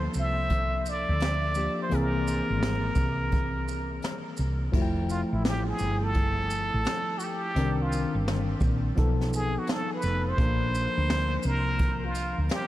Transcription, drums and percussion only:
0.14 shaker soft
0.50 kick medium
0.50 closed hi-hat loud
0.86 shaker medium
1.20 snare medium
1.20 closed hi-hat medium
1.55 shaker soft
1.91 closed hi-hat medium
2.28 shaker soft
2.63 snare loud
2.63 closed hi-hat medium
2.96 kick medium
2.96 closed hi-hat soft
2.96 shaker soft
3.32 kick medium
3.32 closed hi-hat medium
3.68 closed hi-hat medium
3.68 shaker medium
4.02 snare medium
4.02 closed hi-hat medium
4.37 shaker soft
4.74 kick loud
4.74 crash medium
5.10 shaker soft
5.45 snare loud
5.45 closed hi-hat medium
5.79 shaker soft
6.14 kick medium
6.14 closed hi-hat medium
6.51 closed hi-hat medium
6.51 shaker medium
6.85 snare loud
6.85 closed hi-hat medium
7.20 shaker soft
7.56 closed hi-hat medium
7.93 shaker soft
8.28 snare loud
8.28 closed hi-hat medium
8.61 kick medium
8.61 closed hi-hat soft
8.61 shaker soft
8.97 kick medium
8.97 closed hi-hat medium
9.21 snare soft
9.33 shaker medium
9.67 snare loud
9.67 closed hi-hat medium
10.02 shaker soft
10.38 kick loud
10.38 closed hi-hat medium
10.75 shaker medium
11.10 snare loud
11.10 closed hi-hat medium
11.43 shaker soft
11.79 kick medium
11.79 closed hi-hat medium
12.15 closed hi-hat medium
12.15 shaker medium
12.49 snare loud
12.49 closed hi-hat medium

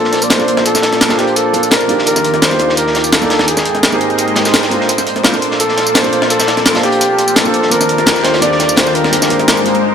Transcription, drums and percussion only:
0.04 snare soft
0.13 snare medium
0.13 closed hi-hat medium
0.13 open hi-hat medium
0.13 tambourine soft
0.22 closed hi-hat soft
0.22 tambourine medium
0.30 snare loud
0.30 closed hi-hat medium
0.30 closed hi-hat loud
0.30 tambourine soft
0.39 snare soft
0.39 tambourine soft
0.48 closed hi-hat medium
0.57 snare soft
0.65 closed hi-hat medium
0.65 tambourine soft
0.75 snare medium
0.75 snare soft
0.75 tambourine medium
0.82 snare loud
0.82 closed hi-hat medium
0.93 snare soft
0.93 closed hi-hat soft
1.01 snare loud
1.01 closed hi-hat medium
1.01 tambourine soft
1.10 snare medium
1.10 closed hi-hat medium
1.10 tambourine soft
1.18 snare soft
1.18 closed hi-hat medium
1.27 closed hi-hat medium
1.36 closed hi-hat medium
1.36 tambourine soft
1.53 closed hi-hat medium
1.53 tambourine soft
1.63 closed hi-hat soft
1.63 tambourine medium
1.71 snare loud
1.71 closed hi-hat medium
1.71 tambourine soft
1.81 tambourine soft
1.89 closed hi-hat medium
1.99 snare soft
2.06 closed hi-hat medium
2.06 tambourine soft
2.16 snare soft
2.16 closed hi-hat soft
2.16 tambourine medium
2.24 closed hi-hat medium
2.34 snare soft
2.34 closed hi-hat soft
2.42 snare loud
2.42 closed hi-hat medium
2.42 tambourine soft
2.51 snare medium
2.51 tambourine soft
2.59 snare soft
2.59 closed hi-hat medium
2.69 snare soft
2.77 closed hi-hat medium
2.77 tambourine soft
2.87 snare soft
2.95 snare medium
2.95 closed hi-hat medium
2.95 open hi-hat medium
2.95 tambourine soft
3.04 closed hi-hat soft
3.04 tambourine medium
3.12 snare loud
3.12 closed hi-hat medium
3.12 tambourine soft
3.22 snare soft
3.22 tambourine soft
3.30 snare loud
3.30 closed hi-hat medium
3.39 snare medium
3.39 snare soft
3.39 closed hi-hat medium
3.48 closed hi-hat medium
3.48 tambourine soft
3.57 snare medium
3.57 snare soft
3.57 tambourine medium
3.65 closed hi-hat medium
3.75 snare soft
3.75 closed hi-hat soft
3.83 snare loud
3.83 closed hi-hat medium
3.83 tambourine soft
3.92 tambourine soft
4.00 closed hi-hat medium
4.10 closed hi-hat soft
4.18 closed hi-hat medium
4.18 tambourine soft
4.28 closed hi-hat soft
4.36 snare loud
4.36 closed hi-hat medium
4.36 tambourine soft
4.45 snare medium
4.45 closed hi-hat medium
4.45 tambourine medium
4.53 snare loud
4.53 closed hi-hat medium
4.53 tambourine soft
4.63 snare loud
4.63 closed hi-hat medium
4.63 tambourine soft
4.71 closed hi-hat medium
4.81 snare soft
4.89 closed hi-hat medium
4.89 tambourine soft
4.98 snare soft
4.98 closed hi-hat soft
4.98 tambourine medium
5.07 closed hi-hat medium
5.16 snare soft
5.16 closed hi-hat soft
5.24 snare loud
5.24 closed hi-hat loud
5.24 closed hi-hat medium
5.24 tambourine soft
5.33 snare medium
5.33 tambourine soft
5.42 closed hi-hat medium
5.52 snare medium
5.60 closed hi-hat medium
5.60 tambourine soft
5.68 snare soft
5.77 snare medium
5.77 closed hi-hat medium
5.77 open hi-hat medium
5.77 tambourine soft
5.86 closed hi-hat soft
5.86 tambourine medium
5.95 snare loud
5.95 closed hi-hat medium
5.95 tambourine soft
6.04 snare soft
6.04 tambourine soft
6.13 closed hi-hat medium
6.22 snare soft
6.30 closed hi-hat medium
6.30 tambourine medium
6.39 snare medium
6.39 snare soft
6.39 tambourine medium
6.47 snare loud
6.47 closed hi-hat medium
6.57 snare soft
6.57 closed hi-hat soft
6.65 snare loud
6.65 closed hi-hat medium
6.65 tambourine soft
6.75 snare loud
6.75 closed hi-hat medium
6.75 tambourine soft
6.83 snare medium
6.83 snare soft
6.83 closed hi-hat medium
6.92 closed hi-hat medium
7.01 closed hi-hat medium
7.01 tambourine medium
7.18 closed hi-hat medium
7.18 tambourine soft
7.28 closed hi-hat soft
7.28 tambourine medium
7.36 snare loud
7.36 closed hi-hat medium
7.36 closed hi-hat loud
7.36 tambourine medium
7.45 tambourine soft
7.54 closed hi-hat medium
7.62 snare soft
7.71 closed hi-hat medium
7.71 tambourine medium
7.81 snare soft
7.81 closed hi-hat soft
7.81 tambourine medium
7.89 closed hi-hat medium
7.98 snare soft
7.98 closed hi-hat soft
8.06 snare loud
8.06 closed hi-hat medium
8.06 tambourine soft
8.16 snare medium
8.16 tambourine soft
8.24 snare loud
8.24 snare soft
8.24 closed hi-hat medium
8.34 snare medium
8.34 closed hi-hat medium
8.42 closed hi-hat medium
8.42 tambourine soft
8.52 snare soft
8.59 snare medium
8.59 closed hi-hat medium
8.59 open hi-hat medium
8.59 tambourine soft
8.69 closed hi-hat soft
8.69 tambourine medium
8.76 snare loud
8.76 closed hi-hat medium
8.76 closed hi-hat loud
8.76 tambourine medium
8.86 snare soft
8.86 tambourine soft
8.95 closed hi-hat medium
9.04 snare soft
9.13 closed hi-hat loud
9.13 closed hi-hat medium
9.13 tambourine medium
9.22 snare medium
9.22 snare soft
9.22 tambourine medium
9.30 closed hi-hat medium
9.39 snare soft
9.39 closed hi-hat soft
9.48 snare loud
9.48 closed hi-hat medium
9.48 tambourine soft
9.57 tambourine soft
9.66 closed hi-hat medium
9.75 closed hi-hat soft

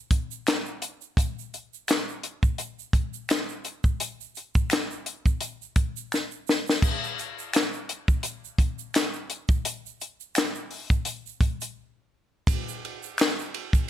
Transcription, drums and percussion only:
0.11 kick medium
0.11 closed hi-hat medium
0.31 shaker soft
0.47 finger snap medium
0.47 snare loud
0.47 clap medium
0.47 closed hi-hat medium
0.47 shaker medium
0.66 shaker soft
0.82 closed hi-hat medium
0.82 shaker soft
1.01 shaker soft
1.17 kick loud
1.17 closed hi-hat loud
1.17 shaker medium
1.39 shaker soft
1.54 closed hi-hat medium
1.54 shaker soft
1.74 shaker soft
1.88 finger snap medium
1.88 snare loud
1.88 clap medium
1.88 closed hi-hat medium
1.88 shaker medium
2.09 shaker soft
2.23 closed hi-hat medium
2.43 kick medium
2.43 shaker soft
2.58 closed hi-hat medium
2.58 shaker medium
2.79 shaker soft
2.93 kick medium
2.93 closed hi-hat medium
3.14 shaker medium
3.29 finger snap medium
3.29 snare loud
3.29 clap medium
3.29 closed hi-hat medium
3.29 shaker medium
3.49 shaker soft
3.65 closed hi-hat medium
3.65 shaker soft
3.84 kick medium
3.84 shaker soft
4.00 closed hi-hat loud
4.00 shaker medium
4.21 shaker soft
4.35 closed hi-hat soft
4.35 shaker soft
4.55 kick loud
4.55 shaker soft
4.70 finger snap medium
4.70 snare loud
4.70 clap medium
4.70 closed hi-hat medium
4.70 shaker medium
4.91 shaker soft
5.06 closed hi-hat medium
5.26 kick medium
5.26 shaker soft
5.41 closed hi-hat medium
5.41 shaker medium
5.62 shaker soft
5.76 kick medium
5.76 closed hi-hat medium
5.97 shaker medium
6.12 finger snap medium
6.12 snare medium
6.12 shaker medium
6.31 shaker soft
6.47 snare medium
6.47 shaker soft
6.67 snare medium
6.67 shaker soft
6.82 kick loud
6.82 crash loud
6.82 shaker medium
7.04 shaker soft
7.19 closed hi-hat soft
7.19 shaker soft
7.39 shaker medium
7.53 finger snap medium
7.53 snare loud
7.53 clap medium
7.53 closed hi-hat loud
7.53 shaker medium
7.73 shaker soft
7.89 closed hi-hat medium
8.08 kick medium
8.08 shaker soft
8.23 closed hi-hat medium
8.23 shaker medium
8.45 shaker soft
8.58 kick medium
8.58 closed hi-hat medium
8.79 shaker medium
8.94 finger snap medium
8.94 snare loud
8.94 clap medium
8.94 closed hi-hat medium
8.94 shaker medium
9.13 shaker soft
9.30 closed hi-hat medium
9.48 kick medium
9.48 shaker soft
9.65 closed hi-hat loud
9.65 shaker medium
9.86 shaker soft
10.01 closed hi-hat medium
10.01 shaker soft
10.20 shaker soft
10.35 finger snap medium
10.35 snare loud
10.35 clap medium
10.35 closed hi-hat medium
10.35 shaker medium
10.55 shaker soft
10.71 open hi-hat soft
10.90 kick medium
10.90 closed hi-hat soft
10.90 shaker soft
11.05 closed hi-hat medium
11.05 shaker medium
11.26 shaker soft
11.41 kick medium
11.41 closed hi-hat medium
11.61 closed hi-hat medium
11.61 shaker medium
12.47 kick loud
12.47 ride medium
12.47 shaker medium
12.68 shaker soft
12.85 ride soft
13.03 shaker medium
13.18 finger snap medium
13.18 snare loud
13.18 ride medium
13.18 shaker medium
13.22 clap loud
13.39 shaker soft
13.54 ride medium
13.73 kick medium
13.73 ride soft
13.73 shaker soft

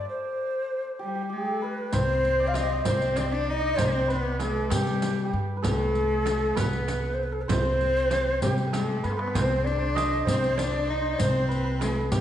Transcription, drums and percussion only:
1.93 riq medium
1.93 frame drum medium
1.93 tombak dum medium
2.25 riq soft
2.54 riq soft
2.54 tombak tek medium
2.54 frame drum medium
2.85 riq medium
2.85 frame drum medium
2.85 tombak dum loud
3.02 riq soft
3.16 riq soft
3.16 tombak tek medium
3.16 frame drum medium
3.78 riq medium
3.78 frame drum medium
3.78 tombak dum medium
4.10 riq soft
4.40 riq soft
4.40 tombak tek medium
4.40 frame drum medium
4.70 riq medium
4.70 frame drum medium
4.70 tombak dum loud
4.87 riq soft
5.02 riq medium
5.02 frame drum medium
5.64 riq medium
5.64 frame drum medium
5.64 tombak dum medium
5.95 riq soft
6.26 riq medium
6.26 tombak tek medium
6.26 frame drum medium
6.57 riq medium
6.57 frame drum loud
6.57 tombak dum medium
6.73 riq soft
6.88 riq soft
6.88 tombak tek medium
6.88 frame drum medium
7.19 tombak ka soft
7.49 riq medium
7.49 frame drum loud
7.49 tombak dum medium
7.81 riq soft
7.97 riq soft
8.11 riq soft
8.11 tombak tek medium
8.11 frame drum medium
8.42 riq medium
8.42 tombak dum medium
8.42 frame drum medium
8.58 riq soft
8.73 riq medium
8.73 tombak tek medium
8.73 frame drum medium
8.81 tombak ka medium
8.88 tombak tek medium
8.97 tombak ka medium
9.04 riq soft
9.04 tombak tek medium
9.12 tombak ka medium
9.19 tombak tek loud
9.27 tombak ka loud
9.35 riq medium
9.35 tombak dum medium
9.35 frame drum medium
9.67 riq soft
9.96 riq medium
9.96 tombak tek medium
9.96 frame drum medium
10.27 riq medium
10.27 tombak dum medium
10.27 frame drum medium
10.44 riq soft
10.58 riq medium
10.58 tombak tek medium
10.58 frame drum medium
10.89 tombak ka soft
11.19 riq medium
11.19 frame drum medium
11.19 tombak dum medium
11.51 riq soft
11.81 riq medium
11.81 tombak tek medium
11.81 frame drum medium
12.12 riq medium
12.12 tombak dum loud
12.12 frame drum medium

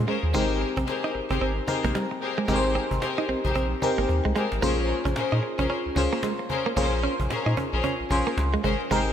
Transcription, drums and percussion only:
0.07 cajon slap soft
0.23 cajon slap soft
0.34 cajon bass loud
0.77 cajon bass loud
0.88 cajon slap loud
1.14 cajon slap soft
1.30 cajon bass medium
1.68 cajon bass loud
1.84 cajon bass medium
1.95 cajon slap loud
2.22 cajon slap soft
2.37 cajon slap soft
2.48 cajon bass loud
2.75 cajon slap soft
2.91 cajon bass loud
3.02 cajon slap loud
3.29 cajon slap soft
3.45 cajon bass medium
3.55 cajon bass medium
3.82 cajon bass loud
3.82 cajon slap medium
4.09 cajon slap medium
4.36 cajon slap medium
4.52 cajon slap medium
4.63 cajon bass loud
5.05 cajon bass loud
5.16 cajon slap loud
5.32 cajon slap soft
5.59 cajon bass loud
5.85 cajon slap soft
5.96 cajon bass loud
5.96 cajon slap medium
6.23 cajon slap loud
6.39 cajon slap soft
6.50 cajon bass medium
6.66 cajon slap soft
6.77 cajon bass loud
6.93 cajon slap soft
7.20 cajon bass loud
7.30 cajon slap loud
7.57 cajon bass loud
7.84 cajon bass loud
8.00 cajon slap soft
8.11 cajon bass loud
8.11 cajon slap medium
8.27 cajon slap soft
8.38 cajon slap loud
8.54 cajon slap soft
8.64 cajon bass medium
8.80 cajon slap soft
8.91 cajon bass loud
9.07 cajon slap soft

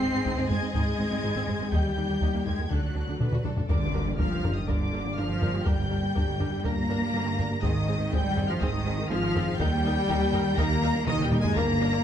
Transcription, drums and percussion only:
0.25 taiko medium
0.50 taiko low medium
0.74 taiko medium
1.48 taiko low medium
1.72 taiko loud
2.21 taiko medium
2.46 taiko low medium
2.71 taiko medium
3.20 taiko low-mid loud
3.32 taiko low-mid loud
3.45 taiko low-mid loud
3.57 taiko low loud
3.69 taiko loud
4.19 taiko medium
4.44 taiko low medium
4.68 taiko medium
5.42 taiko low medium
5.54 taiko rim soft
5.66 taiko loud
6.16 taiko medium
6.40 taiko low medium
6.65 taiko medium
7.27 taiko rim soft
7.39 taiko low medium
7.63 taiko loud
8.13 taiko medium
8.37 taiko low medium
8.61 taiko medium
9.23 taiko rim soft
9.35 taiko low medium
9.60 taiko loud
10.09 taiko loud
10.34 taiko low medium
10.58 taiko loud
11.07 taiko low-mid loud
11.19 taiko low-mid loud
11.32 taiko low-mid loud
11.44 taiko low loud
11.56 taiko loud
11.93 taiko rim medium

